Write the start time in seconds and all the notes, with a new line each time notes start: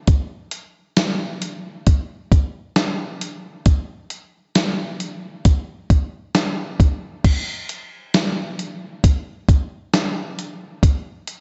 0.07 kick, closed hi-hat
0.51 closed hi-hat
0.97 snare, closed hi-hat, tambourine
1.42 closed hi-hat
1.87 kick, closed hi-hat
2.32 kick, closed hi-hat
2.76 snare, closed hi-hat, tambourine
3.21 closed hi-hat
3.66 kick, closed hi-hat
4.10 closed hi-hat
4.55 snare, closed hi-hat, tambourine
5.00 closed hi-hat
5.45 kick, closed hi-hat
5.90 kick, closed hi-hat
6.35 snare, closed hi-hat, tambourine
6.80 kick, closed hi-hat
7.24 kick, closed hi-hat, crash
7.69 closed hi-hat
8.14 snare, closed hi-hat, tambourine
8.59 closed hi-hat
9.04 kick, closed hi-hat
9.49 kick, closed hi-hat
9.93 snare, closed hi-hat, tambourine
10.39 closed hi-hat
10.83 kick, closed hi-hat
11.27 closed hi-hat